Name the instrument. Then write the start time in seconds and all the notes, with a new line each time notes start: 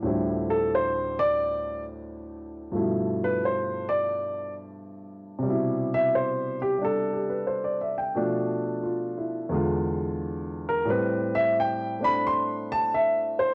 grand piano
0.02 D2 A2 F3 G3
0.06 C4 E4
0.50 A4
0.75 C5
1.19 D5
2.72 G2 B2 F3 A3
2.76 E4
3.24 B4
3.45 C5
3.89 D5
5.39 C3 G3
5.46 B2 E4
5.94 E5
6.15 C5
6.62 G4
6.78 G3 D4
6.84 A4
7.13 G4
7.30 B4
7.47 C5
7.64 D5
7.81 E5
7.98 G5
8.15 B2 F3 A3 D4
8.83 F4
9.18 E4
9.49 E2 D3 G#3
9.55 F4
10.69 A#4
10.85 A2 G3
10.90 C4 B4
11.35 E5
11.60 G5
11.99 A3 C4 D4
12.04 B5
12.27 C6
12.72 A5
12.94 E5
13.39 C5